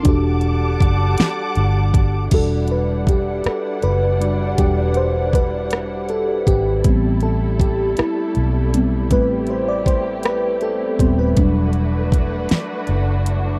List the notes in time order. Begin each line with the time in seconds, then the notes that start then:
0.03 E1 G3 D4 F#4 G4 F#5 A5 D6, kick, closed hi-hat
0.09 A4
0.41 closed hi-hat
0.80 F#1, kick, closed hi-hat
1.18 muted fingered electric bass stroke, snare, closed hi-hat
1.55 G1, closed hi-hat
1.94 kick, closed hi-hat
2.31 E1 G3 D4 E4 F#4 A4 D5 F#5, kick, closed hi-hat, crash
2.68 B4, closed hi-hat
3.07 G4, kick, closed hi-hat
3.44 A4, muted fingered electric bass stroke, cross-stick, closed hi-hat
3.82 F#1 B4, closed hi-hat
4.20 G3 D4 F#4, closed hi-hat
4.58 E1 G3 D4 F#4 G4, kick, closed hi-hat
4.94 C5, closed hi-hat
5.33 B4, kick, closed hi-hat
5.71 cross-stick, closed hi-hat
6.09 A4, closed hi-hat
6.47 G#1 G4, kick, closed hi-hat
6.84 A1 G3 A3 B3 C4 A4, kick, closed hi-hat
7.20 A4, closed hi-hat
7.60 G4, kick, closed hi-hat
7.97 E4, muted fingered electric bass stroke, cross-stick, closed hi-hat
8.35 B1, closed hi-hat
8.74 G3 B3 C4, closed hi-hat
9.10 A1 G3 A3 C4 G4 B4, kick, closed hi-hat
9.47 C5, closed hi-hat
9.68 D5
9.86 C5, kick, closed hi-hat
10.23 B4, cross-stick, closed hi-hat
10.61 A4, closed hi-hat
10.99 D#1 G3 B3 C4 C5, kick, closed hi-hat
11.19 B4
11.37 E1 F#3 G3 D4 F#4 B4, kick, closed hi-hat
11.73 closed hi-hat
12.12 kick, closed hi-hat
12.49 muted fingered electric bass stroke, snare, closed hi-hat
12.87 F#1, closed hi-hat
13.26 closed hi-hat